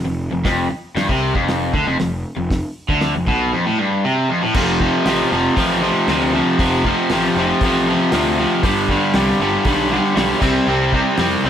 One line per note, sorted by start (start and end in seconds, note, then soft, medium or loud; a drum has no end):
0.05 0.31 F1 medium
0.05 0.27 F2 medium
0.31 0.44 F1 medium
0.31 0.44 F2 medium
0.45 0.69 F1 medium
0.45 0.69 F2 loud
0.45 kick loud
0.45 snare loud
0.45 open hi-hat medium
0.70 muted picked electric bass stroke soft
0.70 muted overdriven electric guitar stroke medium
0.95 1.08 G1 medium
0.95 1.08 G2 loud
0.95 snare loud
0.95 open hi-hat medium
1.08 1.33 C2 loud
1.08 1.34 C3 loud
1.08 kick loud
1.34 1.71 F1 medium
1.34 1.72 F2 loud
1.34 kick loud
1.48 snare loud
1.48 open hi-hat medium
1.73 1.84 D2 loud
1.73 1.86 D3 medium
1.73 kick loud
1.85 1.98 F1 loud
1.85 1.99 F2 loud
1.98 2.23 F1 medium
1.98 2.20 F2 medium
1.98 snare loud
1.98 open hi-hat medium
2.36 2.61 F1 medium
2.36 2.58 F2 medium
2.51 kick loud
2.51 snare loud
2.51 open hi-hat medium
2.89 3.13 D2 medium
2.89 3.14 D3 loud
2.89 kick loud
3.01 snare loud
3.01 open hi-hat medium
3.15 3.27 F1 medium
3.15 3.28 F2 medium
3.27 3.51 B1 medium
3.27 3.53 B2 loud
3.27 kick loud
3.53 3.65 F2 loud
3.66 3.78 A2 loud
3.78 4.04 G2 loud
4.04 4.29 C3 loud
4.29 4.42 F2 loud
4.41 4.54 A2 loud
4.54 4.88 F1 loud
4.54 4.80 F2 loud
4.54 4.80 C3 loud
4.54 4.82 F3 loud
4.54 kick loud
4.54 crash loud
4.80 5.06 F2 medium
4.80 5.06 C3 medium
4.80 5.07 F3 medium
4.80 kick medium
5.06 5.22 A1 medium
5.06 5.31 F2 loud
5.06 5.31 C3 loud
5.06 5.32 F3 loud
5.06 snare loud
5.06 open hi-hat medium
5.31 5.48 F1 medium
5.31 5.55 F2 medium
5.31 5.56 C3 medium
5.31 5.57 F3 loud
5.56 5.90 A1 medium
5.56 5.81 F2 loud
5.56 5.81 C3 loud
5.56 5.82 F3 loud
5.56 kick loud
5.56 open hi-hat medium
5.82 6.07 F2 medium
5.82 6.08 C3 medium
5.82 6.08 F3 loud
6.08 6.40 D2 loud
6.08 6.32 F2 loud
6.08 6.33 C3 loud
6.08 6.34 F3 loud
6.08 snare loud
6.08 open hi-hat medium
6.34 6.58 F2 medium
6.34 6.58 C3 medium
6.34 6.59 F3 loud
6.59 6.91 F1 loud
6.59 6.84 F2 loud
6.59 6.84 C3 loud
6.59 6.85 F3 loud
6.59 kick loud
6.59 open hi-hat medium
6.85 7.10 F2 medium
6.85 7.10 C3 medium
6.85 7.11 F3 loud
6.85 kick medium
7.10 7.27 A1 medium
7.10 7.36 F2 medium
7.10 7.37 C3 loud
7.10 7.38 F3 loud
7.10 snare loud
7.10 open hi-hat medium
7.35 7.52 F1 medium
7.35 7.62 F2 medium
7.35 7.62 C3 medium
7.35 7.63 F3 medium
7.61 7.94 A1 loud
7.61 7.86 F2 loud
7.61 7.87 C3 loud
7.61 7.87 F3 loud
7.61 kick loud
7.61 open hi-hat medium
7.87 8.12 F2 medium
7.87 8.13 C3 medium
7.87 8.13 F3 loud
8.12 8.45 D2 loud
8.12 8.38 F2 loud
8.12 8.38 C3 loud
8.12 8.38 F3 loud
8.12 snare loud
8.12 open hi-hat medium
8.39 8.63 F2 medium
8.39 8.63 C3 loud
8.39 8.63 F3 medium
8.63 8.96 G1 medium
8.63 8.89 G2 loud
8.63 8.90 D3 loud
8.63 8.91 G3 loud
8.63 kick loud
8.63 open hi-hat medium
8.89 9.14 G2 medium
8.89 9.15 D3 medium
8.89 9.16 G3 loud
8.89 kick medium
9.14 9.30 C2 loud
9.14 9.40 G2 loud
9.14 9.40 D3 loud
9.14 9.42 G3 loud
9.14 snare loud
9.14 open hi-hat medium
9.40 9.56 G1 medium
9.40 9.65 G2 medium
9.40 9.65 D3 medium
9.40 9.66 G3 loud
9.65 9.98 B1 loud
9.65 9.90 G2 loud
9.65 9.91 D3 loud
9.65 9.92 G3 loud
9.65 kick loud
9.65 open hi-hat medium
9.91 10.14 G2 medium
9.91 10.15 D3 loud
9.91 10.16 G3 loud
10.15 10.32 B1 medium
10.15 10.40 G2 loud
10.15 10.40 D3 loud
10.15 10.41 G3 loud
10.15 snare loud
10.15 open hi-hat medium
10.40 10.58 C2 medium
10.40 10.66 C3 loud
10.40 10.67 G3 medium
10.40 10.68 C4 loud
10.40 kick loud
10.40 crash loud
10.67 10.99 C2 loud
10.67 10.92 C3 loud
10.67 10.92 G3 loud
10.67 10.95 C4 loud
10.93 11.18 C3 medium
10.93 11.18 G3 medium
10.93 11.20 C4 medium
10.93 kick medium
11.17 11.34 F2 medium
11.17 11.44 C3 medium
11.17 11.44 G3 loud
11.17 11.45 C4 loud
11.17 snare loud
11.17 open hi-hat medium
11.44 11.50 C2 medium
11.44 11.50 C3 medium
11.44 11.50 G3 medium
11.44 11.50 C4 medium